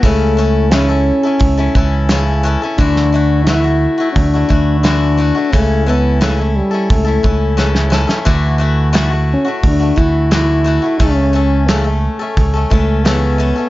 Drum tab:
HH |o---o---o---o---|o---o---o---o---|o---o---o-------|o---o---o---o---|
SD |----o-------o---|-o--o-------o---|----o-------oooo|----o-------o---|
BD |o-------o-o-----|o-------o-o-----|o-------o-o-----|o-------o-o-----|

HH |o---o---o---o---|
SD |----o-------o---|
BD |o-------o-o-----|